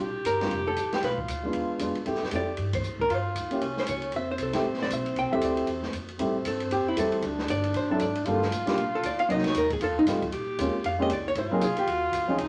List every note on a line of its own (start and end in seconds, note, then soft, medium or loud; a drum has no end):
0.00 0.24 A#1 medium
0.00 1.03 G4 loud
0.25 0.50 G1 medium
0.25 0.64 A#4 medium
0.25 kick soft
0.25 hi-hat pedal medium
0.25 ride medium
0.41 0.50 G3 medium
0.41 0.50 C4 medium
0.41 0.51 D4 soft
0.41 0.51 F4 medium
0.41 snare soft
0.41 ride soft
0.51 0.76 F1 medium
0.51 kick soft
0.51 ride soft
0.67 0.91 A4 medium
0.76 0.90 A1 medium
0.76 kick soft
0.76 hi-hat pedal medium
0.76 ride medium
0.91 1.03 G4 medium
0.91 muted upright bass stroke soft
0.91 snare medium
0.91 ride soft
1.02 1.27 B1 medium
1.02 1.92 F4 medium
1.02 1.19 B4 medium
1.02 kick soft
1.02 snare soft
1.02 ride soft
1.18 kick medium
1.28 1.53 D2 medium
1.28 kick soft
1.28 hi-hat pedal medium
1.28 ride medium
1.43 1.78 G#3 medium
1.43 1.78 B3 soft
1.43 1.79 D4 soft
1.43 1.79 F4 medium
1.53 1.79 E2 medium
1.53 kick soft
1.53 ride medium
1.79 1.94 F2 medium
1.79 1.94 G#3 medium
1.79 1.94 B3 medium
1.79 1.95 D4 soft
1.79 1.95 F4 medium
1.79 kick soft
1.79 hi-hat pedal medium
1.79 ride medium
1.95 muted upright bass stroke soft
1.95 ride soft
2.05 2.20 A2 medium
2.05 2.20 A3 medium
2.05 2.20 C4 medium
2.05 2.21 E4 soft
2.05 2.79 G4 medium
2.05 2.21 G4 medium
2.05 kick soft
2.05 ride soft
2.15 snare soft
2.22 muted upright bass stroke soft
2.22 snare soft
2.31 2.57 F2 medium
2.31 2.46 A3 medium
2.31 2.47 C4 soft
2.31 2.47 E4 soft
2.31 2.47 G4 medium
2.31 kick soft
2.31 hi-hat pedal soft
2.31 ride medium
2.35 2.72 D5 medium
2.57 2.83 G2 medium
2.57 kick soft
2.57 ride medium
2.73 2.98 C5 medium
2.73 kick medium
2.73 ride medium
2.83 3.09 A2 medium
2.83 hi-hat pedal medium
2.99 3.11 A#4 medium
2.99 kick soft
3.09 3.35 G2 medium
3.09 3.58 F4 loud
3.09 kick soft
3.09 ride medium
3.14 3.22 C5 medium
3.35 3.61 D2 medium
3.35 kick soft
3.35 hi-hat pedal medium
3.35 ride medium
3.51 3.60 A#3 medium
3.51 3.61 C#4 medium
3.51 3.61 E4 soft
3.51 3.61 G4 medium
3.51 ride soft
3.61 3.86 C2 medium
3.61 4.16 C#4 medium
3.61 kick soft
3.61 ride medium
3.77 3.88 C5 medium
3.77 snare soft
3.87 4.11 C#2 medium
3.87 4.12 C#5 medium
3.87 kick soft
3.87 hi-hat pedal medium
3.87 ride medium
4.02 ride soft
4.12 4.38 F2 medium
4.12 6.10 C4 medium
4.12 kick soft
4.12 ride soft
4.16 4.30 E5 medium
4.31 4.40 C5 medium
4.38 4.63 C2 medium
4.38 kick soft
4.38 hi-hat pedal medium
4.38 ride medium
4.43 4.56 A4 medium
4.53 4.63 A3 medium
4.53 4.64 C4 medium
4.53 4.64 E4 medium
4.53 4.64 G4 medium
4.53 snare soft
4.53 ride medium
4.64 4.89 A1 medium
4.64 kick soft
4.74 snare soft
4.82 4.92 D5 medium
4.82 snare soft
4.90 5.15 B1 medium
4.90 5.16 E5 medium
4.90 kick soft
4.90 hi-hat pedal medium
4.90 ride medium
5.06 ride soft
5.16 5.24 C2 medium
5.16 5.32 G5 medium
5.16 kick soft
5.16 ride soft
5.24 5.33 A1 medium
5.32 5.41 F1 medium
5.32 5.66 A3 medium
5.32 5.66 C4 medium
5.32 5.67 E4 medium
5.32 5.67 G4 medium
5.32 5.44 E5 medium
5.41 5.67 D2 medium
5.41 5.53 D5 medium
5.41 kick soft
5.41 hi-hat pedal medium
5.41 ride medium
5.57 ride soft
5.67 5.92 E2 medium
5.67 kick soft
5.67 ride medium
5.83 snare soft
5.93 6.19 F2 medium
5.93 kick soft
5.93 hi-hat pedal medium
5.93 ride medium
6.08 ride soft
6.19 6.44 A2 medium
6.19 6.33 G3 medium
6.19 6.34 A3 medium
6.19 7.27 C4 medium
6.19 6.34 C4 soft
6.19 6.34 E4 medium
6.19 6.34 G4 medium
6.19 kick soft
6.19 ride medium
6.45 6.70 G2 medium
6.45 6.71 A4 medium
6.45 kick soft
6.45 hi-hat pedal medium
6.45 ride medium
6.60 ride soft
6.71 6.96 F2 medium
6.71 6.87 G4 medium
6.71 kick soft
6.71 ride medium
6.88 6.98 E4 medium
6.96 7.22 E2 medium
6.96 7.23 G3 medium
6.96 7.23 A3 medium
6.96 7.23 C4 medium
6.96 7.23 E4 medium
6.96 7.23 G4 medium
6.96 7.37 A4 medium
6.96 kick soft
6.96 hi-hat pedal medium
6.96 ride medium
7.12 ride soft
7.22 7.47 D2 medium
7.22 8.27 D4 medium
7.22 kick soft
7.22 ride medium
7.38 snare soft
7.48 7.73 G1 medium
7.48 7.74 D5 loud
7.48 kick soft
7.48 hi-hat pedal medium
7.48 ride medium
7.64 ride soft
7.74 7.99 A1 medium
7.74 7.91 C5 medium
7.74 kick soft
7.74 ride medium
7.90 7.99 F#3 medium
7.90 7.99 C4 medium
7.90 8.00 D4 medium
7.90 8.00 E4 medium
7.90 8.01 A4 medium
7.90 8.00 A4 medium
7.99 8.25 G#1 medium
7.99 8.40 D5 medium
7.99 kick soft
7.99 hi-hat pedal medium
7.99 ride medium
8.15 ride soft
8.25 8.51 G1 medium
8.25 8.40 G3 medium
8.25 8.40 A#3 medium
8.25 8.41 D4 medium
8.25 9.28 F4 loud
8.25 8.41 F4 medium
8.25 8.41 A4 medium
8.25 kick soft
8.25 ride medium
8.42 snare soft
8.52 8.76 A1 medium
8.52 kick soft
8.52 hi-hat pedal medium
8.52 ride medium
8.66 8.76 G3 medium
8.66 8.76 A#3 medium
8.66 8.76 D4 medium
8.66 8.77 F4 medium
8.66 8.77 G4 medium
8.66 snare medium
8.66 ride soft
8.77 9.02 A#1 medium
8.77 kick soft
8.77 ride medium
8.95 9.04 A4 medium
9.03 9.28 D2 medium
9.03 9.19 D5 medium
9.03 kick soft
9.03 hi-hat pedal medium
9.03 ride medium
9.19 9.29 F5 loud
9.19 ride soft
9.28 9.54 C2 medium
9.28 9.43 F#3 medium
9.28 9.43 A#3 medium
9.28 9.43 C4 medium
9.28 9.67 D#4 loud
9.28 9.43 D#4 medium
9.28 9.44 F#4 medium
9.28 9.45 D#5 medium
9.28 kick soft
9.28 ride medium
9.38 snare soft
9.44 9.56 C#5 medium
9.44 snare soft
9.44 ride medium
9.54 9.79 D#2 medium
9.54 9.72 A#4 medium
9.54 kick soft
9.54 hi-hat pedal medium
9.54 ride medium
9.70 9.82 G#4 medium
9.70 kick medium
9.70 ride soft
9.80 9.89 F2 medium
9.80 10.20 F4 medium
9.80 9.97 A4 medium
9.80 kick soft
9.80 ride medium
9.89 9.97 D#2 medium
9.98 10.06 C2 medium
9.98 10.04 D#4 medium
10.06 10.32 A2 medium
10.06 10.20 G3 medium
10.06 10.21 A3 medium
10.06 10.21 C4 medium
10.06 10.21 D#4 medium
10.06 10.22 F4 medium
10.06 kick soft
10.06 snare soft
10.06 hi-hat pedal medium
10.06 ride medium
10.22 kick medium
10.22 ride soft
10.32 10.57 A#2 medium
10.32 11.05 G4 loud
10.32 kick soft
10.32 ride medium
10.58 10.73 D#2 medium
10.58 10.72 G#3 medium
10.58 10.73 A#3 medium
10.58 10.73 C4 medium
10.58 10.73 C#4 medium
10.58 10.74 F4 medium
10.58 kick soft
10.58 hi-hat pedal medium
10.58 ride medium
10.74 muted upright bass stroke soft
10.84 11.09 F2 medium
10.84 11.00 F5 medium
10.84 kick soft
10.84 ride medium
10.99 11.08 G#3 medium
10.99 11.09 A#3 medium
10.99 11.09 C4 medium
10.99 11.09 C#4 medium
10.99 11.09 G4 medium
10.99 11.11 D#5 medium
11.10 11.34 C#2 medium
11.10 11.27 D5 medium
11.10 kick soft
11.10 hi-hat pedal medium
11.10 ride medium
11.28 11.37 C#5 loud
11.35 11.50 G#1 medium
11.35 12.40 F4 loud
11.35 11.54 C5 medium
11.35 kick soft
11.35 ride medium
11.51 11.60 F#3 medium
11.51 11.61 A#3 medium
11.51 11.61 C4 medium
11.51 11.61 D#4 medium
11.51 11.62 G#4 medium
11.51 11.62 A#4 medium
11.51 muted upright bass stroke soft
11.61 11.75 C2 medium
11.61 11.78 G#4 medium
11.61 kick soft
11.61 hi-hat pedal medium
11.61 ride medium
11.76 11.90 G4 medium
11.76 muted upright bass stroke soft
11.76 ride soft
11.86 12.11 D#2 medium
11.86 12.40 F#4 medium
11.86 kick soft
11.86 ride medium
12.12 12.37 D2 medium
12.12 kick soft
12.12 hi-hat pedal medium
12.12 ride medium
12.27 12.37 F3 medium
12.27 12.38 C4 medium
12.27 12.38 C#4 medium
12.27 12.38 D#4 medium
12.27 12.38 G#4 medium
12.38 12.48 C#2 medium
12.38 12.48 D#4 loud
12.38 kick soft
12.38 ride medium